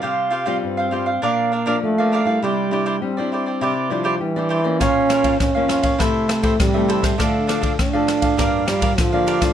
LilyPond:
<<
  \new Staff \with { instrumentName = "Cavaquinho" } { \time 4/4 \key c \mixolydian \tempo 4 = 101 <f' g' c'' f''>8 <f' g' c'' f''>16 <f' g' c'' f''>16 r16 <g' c'' f''>16 <f' g' c'' f''>16 <g' c'' f''>16 <d' bes' d'' f''>8 <d' bes' d'' f''>16 <d' bes' d'' f''>16 r16 <bes' d'' f''>16 <d' bes' d'' f''>16 <bes' d'' f''>16 | <e' g' c'' d''>8 <e' g' c'' d''>16 <e' g' c'' d''>16 r16 <g' c'' d''>16 <e' g' c'' d''>16 <g' c'' d''>16 <e' g' c'' d''>8 <e' g' c'' d''>16 <e' g' c'' d''>16 r16 <g' c'' d''>16 <e' g' c'' d''>16 <g' c'' d''>16 | <f' bes' des'' f''>8 <f' bes' des'' f''>16 <f' bes' des'' f''>16 r16 <bes' des'' f''>16 <f' bes' des'' f''>16 <bes' des'' f''>16 <e' a' c'' e''>8 <e' a' c'' e''>16 <e' a' c'' e''>16 r16 <a' c'' e''>16 <e' a' c'' e''>16 <a' c'' e''>16 | <d' a' d'' f''>8 <d' a' d'' f''>16 <d' a' d'' f''>16 r16 <a' d'' f''>16 <d' a' d'' f''>16 <a' d'' f''>16 <g' bes' d'' f''>8 <g' bes' d'' f''>16 <g' bes' d'' f''>16 r16 <bes' d'' f''>16 <g' bes' d'' f''>16 <bes' d'' f''>16 | }
  \new Staff \with { instrumentName = "Nylon-string guitar" } { \time 4/4 \key c \mixolydian << { <g c' f'>8 r16 <g c' f'>8. <g c' f'>16 r16 <f bes d'>8 r16 <f bes d'>8 <f bes d'>8 <g d' e'>16~ | <g d' e'>8 <g d' e'>8. <g d' e'>4 r16 <g d' e'>8. <g d' e'>8 <f bes des'>16~ | <f bes des'>8 r16 <f bes des'>8 <f bes des'>8. <e a c'>8 r16 <e a c'>8 <e a c'>8. | <f a d'>16 r16 <f a d'>8 r16 <f a d'>8. <f bes d'>8 <f bes d'>8 r16 <f bes d'>8 <e a d'>16 | } \\ { c4 g,4 bes,4 f4 | c4 g4 c4 g4 | bes,4 f,4 c4 c4 | d4 a,4 g,4 d4 | } >> }
  \new Staff \with { instrumentName = "Trombone" } { \time 4/4 \key c \mixolydian r4 c'4 bes4 a4 | g4 c'4. f8 e4 | des'4 des'4 a4 g4 | a8 r8 d'4. g8 f4 | }
  \new DrumStaff \with { instrumentName = "Drums" } \drummode { \time 4/4 r4 r4 r4 r4 | r4 r4 r4 r4 | <bd cymr ss>8 <cymr ss>16 <bd cymr>16 <bd cymr ss>8 <cymr ss>16 <bd cymr>16 <bd cymr ss>8 <cymr ss>16 <bd cymr>16 <bd cymr ss>8 cymr16 <bd cymr ss>16 | <bd cymr ss>8 <cymr ss>16 <bd cymr>16 <bd cymr ss>8 <cymr ss>16 <bd cymr>16 <bd cymr ss>8 <cymr ss>16 <bd cymr>16 <bd cymr ss>8 cymr16 <bd cymr ss>16 | }
>>